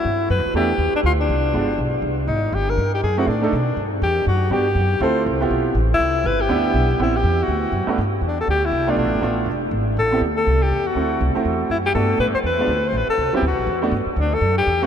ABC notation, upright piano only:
X:1
M:4/4
L:1/8
Q:"Swing" 1/4=242
K:G
V:1 name="Upright piano"
z4 [A,B,DE] z3 | z4 [_A,B,D=F] z3 | z8 | z [A,CE_A] z [=A,D_E=A] z4 |
z4 [B,DFG] z3 | [CE=FA]3 [B,EFG]3 z2 | z4 [B,DEG]3 z | [B,CEG] z6 [G,,A,B,DF] |
z6 z [A,B,D=F]- | [A,B,D=F]2 [A,B,DF]2 z4 | z [B,CEG] z6 | [A,CEF]3 [A,CEF]3 z2 |
[A,B,DF]3 z2 [^G,B,D=F] z2 | z3 [F,B,CE] z3 [A,B,DF] | z6 z [A,CE] |]